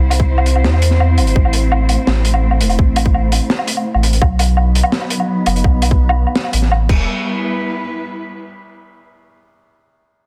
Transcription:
Already playing: sub bass C2, cello section G3 C4 E4 C5
0.10 closed hi-hat, low woodblock
0.20 kick
0.38 low woodblock
0.46 closed hi-hat
0.56 low woodblock
0.64 sub bass E2, snare
0.74 low woodblock
0.82 closed hi-hat
0.91 snare
1.00 sub bass E2, low woodblock
1.18 sub bass G1, closed hi-hat, low woodblock
1.27 closed hi-hat
1.36 sub bass A1, cello section A3, kick
1.45 low woodblock
1.53 closed hi-hat
1.72 low woodblock
1.89 closed hi-hat, low woodblock
2.07 sub bass A1, snare, low woodblock
2.25 closed hi-hat
2.34 low woodblock
2.51 low woodblock
2.61 sub bass E1, closed hi-hat
2.69 closed hi-hat, low woodblock
2.79 sub bass A1, kick
2.96 closed hi-hat, low woodblock
3.06 kick
3.14 low woodblock
3.32 closed hi-hat, low woodblock
3.50 snare
3.59 low woodblock
3.67 closed hi-hat
3.77 low woodblock
3.94 sub bass A1, low woodblock
4.03 closed hi-hat
4.13 closed hi-hat
4.21 sub bass B1, cello section F#3, kick, low woodblock
4.35 cello section B3, closed hi-hat, low woodblock
4.47 cello section D#4 B4
4.57 low woodblock
4.75 closed hi-hat
4.83 low woodblock
4.92 snare
5.01 low woodblock
5.10 closed hi-hat
5.20 low woodblock
5.46 sub bass F#1, closed hi-hat, low woodblock
5.56 closed hi-hat
5.64 sub bass B1, kick, low woodblock
5.82 closed hi-hat, low woodblock
5.91 kick
6.09 low woodblock
6.27 low woodblock
6.36 snare
6.44 low woodblock
6.46 low woodblock
6.49 low woodblock
6.51 sub bass A1, closed hi-hat, low woodblock
6.58 low woodblock
6.60 snare, low woodblock
6.72 low woodblock
6.89 sub bass E1, cello section G3, kick, crash
6.94 cello section B3
7.17 cello section E4
7.23 cello section B4

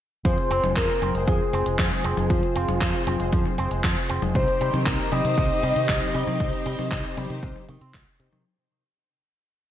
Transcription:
0.25 fingered electric bass F2, clean electric guitar F3, analog polysynth C4 F4 G#4 C5, soft synth lead C5, kick, closed hi-hat
0.38 closed hi-hat
0.50 fingered electric bass F1, clean electric guitar C4, closed hi-hat
0.63 fingered electric bass F1, clean electric guitar G#3, closed hi-hat, high tom
0.76 fingered electric bass F2, clean electric guitar F3, soft synth lead A#4, kick, clap, closed hi-hat
1.02 fingered electric bass F1, clean electric guitar C4, closed hi-hat, high tom
1.15 fingered electric bass F1, clean electric guitar G#3, analog polysynth C4 F4 G#4 C5, closed hi-hat
1.28 fingered electric bass F2, clean electric guitar F3, soft synth lead G#4, kick, closed hi-hat
1.53 fingered electric bass F1, clean electric guitar C4, closed hi-hat
1.66 fingered electric bass F1, clean electric guitar G#3, closed hi-hat
1.79 fingered electric bass F2, clean electric guitar F3, soft synth lead G#4, kick, clap, closed hi-hat
1.92 closed hi-hat, high tom
2.04 fingered electric bass F1, clean electric guitar C4, closed hi-hat
2.17 fingered electric bass F1, clean electric guitar G#3, closed hi-hat, high tom
2.30 fingered electric bass F2, clean electric guitar F3, analog polysynth C4 F4 G#4 C5, soft synth lead F4, kick, closed hi-hat
2.43 closed hi-hat
2.56 fingered electric bass F1, clean electric guitar C4, closed hi-hat
2.68 fingered electric bass F1, clean electric guitar G#3, closed hi-hat, high tom
2.81 fingered electric bass F2, clean electric guitar F3, kick, clap, closed hi-hat
2.94 closed hi-hat
3.07 fingered electric bass F1, clean electric guitar C4, closed hi-hat, high tom
3.20 fingered electric bass F1, clean electric guitar G#3, analog polysynth C4 F4 G#4 C5, closed hi-hat
3.33 fingered electric bass F2, clean electric guitar F3, kick, closed hi-hat
3.45 high tom
3.58 fingered electric bass F1, analog polysynth C4 F4 G#4 C5, clean electric guitar C4, closed hi-hat
3.71 fingered electric bass F1, clean electric guitar G#3, closed hi-hat
3.84 fingered electric bass F2, clean electric guitar F3, kick, clap, closed hi-hat
3.97 closed hi-hat
4.10 fingered electric bass F1, clean electric guitar C4, closed hi-hat
4.22 fingered electric bass F1, clean electric guitar G#3, closed hi-hat, high tom
4.35 fingered electric bass C2, clean electric guitar C3, analog polysynth C4 D#4 G4 C5, string machine C4 D#4 G4, soft synth lead C5, kick, closed hi-hat
4.48 closed hi-hat
4.61 fingered electric bass C3, clean electric guitar G3, closed hi-hat
4.74 fingered electric bass C3, clean electric guitar D#3, closed hi-hat, high tom
4.86 fingered electric bass C2, clean electric guitar C3, soft synth lead A#4, kick, clap, closed hi-hat
5.12 fingered electric bass C3, clean electric guitar G3, soft synth lead D#5, closed hi-hat, high tom
5.25 fingered electric bass C3, clean electric guitar D#3, analog polysynth C4 D#4 G4 C5, closed hi-hat
5.38 fingered electric bass C2, clean electric guitar C3, kick, closed hi-hat
5.63 fingered electric bass C3, clean electric guitar G3, closed hi-hat
5.76 fingered electric bass C3, clean electric guitar D#3, closed hi-hat
5.89 fingered electric bass C2, clean electric guitar C3, kick, clap, closed hi-hat
6.02 closed hi-hat, high tom
6.14 fingered electric bass C3, clean electric guitar G3, closed hi-hat
6.27 fingered electric bass C3, clean electric guitar D#3, closed hi-hat, high tom
6.40 fingered electric bass C2, clean electric guitar C3, analog polysynth C4 D#4 G4 C5, kick, closed hi-hat
6.53 closed hi-hat
6.66 fingered electric bass C3, clean electric guitar G3, closed hi-hat
6.79 fingered electric bass C3, clean electric guitar D#3, closed hi-hat, high tom
6.91 fingered electric bass C2, clean electric guitar C3, kick, clap, closed hi-hat
7.05 closed hi-hat
7.17 fingered electric bass C3, clean electric guitar G3, closed hi-hat, high tom
7.30 fingered electric bass C3, clean electric guitar D#3, analog polysynth C4 D#4 G4 C5, closed hi-hat
7.43 fingered electric bass C2, clean electric guitar C3, kick, closed hi-hat
7.56 high tom
7.68 fingered electric bass C3, clean electric guitar D#3, closed hi-hat
7.81 fingered electric bass C3, clean electric guitar C4, closed hi-hat
7.94 fingered electric bass C2, clean electric guitar A#2, kick, clap, closed hi-hat
8.07 closed hi-hat
8.19 fingered electric bass C3, clean electric guitar C3, analog polysynth C4 D#4 G4 C5, closed hi-hat
8.32 fingered electric bass C3, clean electric guitar D#3, closed hi-hat, high tom

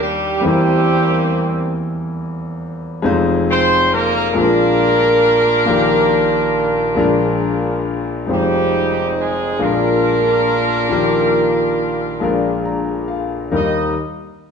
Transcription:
Already playing: grand piano D#2 D#3 G3 A#3 D4 G4 A#4
0.01 horn section G3 G4
0.40 grand piano E2 E3 G3 A#3 C4
0.45 horn section G3 A#3 C4 G4, grand piano E4 A#4
3.02 grand piano F1 F2 G#3 C4 D#4 F4 C5
3.51 horn section C4 C5
3.93 horn section A#3 A#4
4.34 grand piano A#1 A#2 G#3 A#3 C4 F4 A#4, horn section A#3 D4 F4 A#4
4.42 grand piano D4
5.66 grand piano A#1 A#2 D#3 A#3 G4
6.95 grand piano A#1 A#2 G#3 A#3 D4 F4 A#4
8.26 grand piano F1 F2 G#3 C4 D#4 F4 C5
8.31 horn section G3 C4 D#4 G4
9.19 horn section G#3 G#4
9.58 grand piano A#1 A#2 G#3 A#3 D4 F4 A#4, horn section D4 F4
9.63 horn section A#3 A#4
10.88 grand piano A#1 A#2 D#3 A#3 G4
12.20 grand piano A#1 A#2 G#3 A#3 D4 F4 A#4
12.65 grand piano A#5
13.08 grand piano F5
13.51 grand piano D#2 G3 A#3 D#4 A#4, horn section D#4 D#5

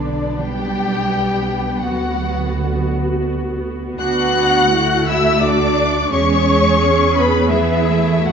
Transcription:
Already playing: double bass section B1, cello section D3, viola section B3 D4, violin section D4 D5
0.40 cello section G3, violin section G4 G5
1.83 double bass section D2, cello section F#3, violin section F#4 F#5, viola section F#4
3.98 double bass section D2, viola section B3 D4, cello section F#4, violin section F#5 F#6
4.72 viola section A3 E4
5.07 cello section E4, viola section F#4, violin section E5 E6
5.43 cello section D4, violin section D5 D6
6.12 double bass section E2, viola section G#3 G#4, cello section C#4, violin section C#5 C#6
6.47 viola section G#3
6.82 viola section C#4
7.17 cello section B3, violin section B4 B5
7.50 cello section E3, viola section B3 G#4, violin section E4 E5
7.89 viola section A3
8.26 double bass section F#2, cello section F#3, viola section F#4, violin section F#4 F#5

